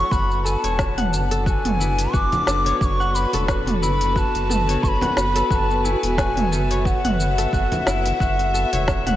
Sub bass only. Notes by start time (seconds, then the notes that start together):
0.11 F#1
0.64 E1
1.12 F#1
1.64 F#1
2.14 F#1
2.47 F#1
2.81 F#1
3.33 E1
3.82 F#1
4.34 F#1
4.83 F#1
5.17 F#1
5.50 F#1
6.03 E1
6.51 F#1
7.04 F#1
7.53 F#1
7.86 F#1
8.20 F#1
8.72 E1